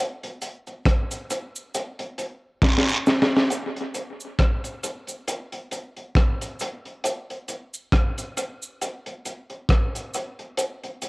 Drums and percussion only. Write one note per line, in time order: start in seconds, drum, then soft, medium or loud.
0.23 closed hi-hat medium
0.42 closed hi-hat medium
0.42 cabasa medium
0.67 closed hi-hat soft
0.67 cabasa medium
0.85 kick loud
0.85 cross-stick loud
0.85 closed hi-hat loud
1.11 closed hi-hat medium
1.11 cabasa medium
1.30 closed hi-hat medium
1.30 cabasa medium
1.56 cabasa medium
1.74 closed hi-hat medium
1.74 cabasa medium
1.99 closed hi-hat medium
2.18 closed hi-hat medium
2.18 cabasa soft
2.62 kick loud
2.62 snare medium
2.62 long guiro medium
2.78 snare medium
2.89 cabasa medium
3.06 snare medium
3.06 cabasa medium
3.22 snare loud
3.36 snare medium
3.50 closed hi-hat loud
3.50 cabasa medium
3.76 closed hi-hat medium
3.94 closed hi-hat medium
3.94 cabasa medium
4.20 cabasa medium
4.39 kick loud
4.39 cross-stick loud
4.39 closed hi-hat loud
4.64 closed hi-hat medium
4.64 cabasa medium
4.83 closed hi-hat medium
4.83 cabasa medium
5.07 closed hi-hat soft
5.07 cabasa medium
5.28 closed hi-hat medium
5.28 cabasa medium
5.52 closed hi-hat medium
5.71 closed hi-hat medium
5.71 cabasa soft
5.96 closed hi-hat soft
6.15 kick loud
6.15 cross-stick loud
6.15 closed hi-hat medium
6.41 closed hi-hat medium
6.41 cabasa medium
6.59 closed hi-hat medium
6.59 cabasa medium
6.85 closed hi-hat soft
7.04 closed hi-hat medium
7.04 cabasa medium
7.30 closed hi-hat soft
7.48 closed hi-hat medium
7.48 cabasa soft
7.74 cabasa medium
7.92 kick loud
7.92 cross-stick loud
7.92 closed hi-hat loud
8.18 closed hi-hat medium
8.18 cabasa medium
8.37 closed hi-hat medium
8.37 cabasa medium
8.62 cabasa medium
8.81 closed hi-hat medium
8.81 cabasa medium
9.06 closed hi-hat medium
9.25 closed hi-hat medium
9.25 cabasa soft
9.50 closed hi-hat soft
9.69 kick loud
9.69 cross-stick loud
9.69 closed hi-hat medium
9.95 closed hi-hat medium
9.95 cabasa medium
10.14 closed hi-hat medium
10.14 cabasa medium
10.39 closed hi-hat soft
10.57 closed hi-hat medium
10.57 cabasa medium
10.84 closed hi-hat soft
11.02 closed hi-hat medium
11.02 cabasa soft